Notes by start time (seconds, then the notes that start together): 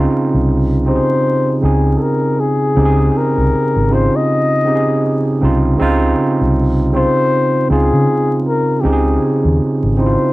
Already playing: C#3 C4 D#4 F4
0.34 C2
0.86 C#3 C4 D#4 G4 C5
0.96 G#4
1.61 C#2 C#3 C4 D#4 G#4
1.97 A4
2.02 A#4
2.40 G#4
2.76 C#2 C#3 C4 D#4 G4
2.85 G#4
3.17 A#4
3.38 C2
3.76 G#1
3.89 C#3 C4 D#4 F4 C5
4.16 D#5
4.65 C#3 C4 D#4 G4
4.75 G#4
5.41 C2 C#3 C4 D#4 F4
5.79 C#2 C#3 C4 D#4 F4
6.41 C2
6.92 C#3 C4 D#4 F4 C5
7.68 C#2 C#3 C4 D#4 F4 G#4
7.93 C#3
8.48 A#4
8.81 C#2 C#3 C4 D#4 G4
8.86 G4 G#4
8.93 G#4
9.45 D#2
9.60 muted fingered electric bass stroke
9.83 G#1
9.96 C#3 C4 D#4 E4 C5
10.06 F4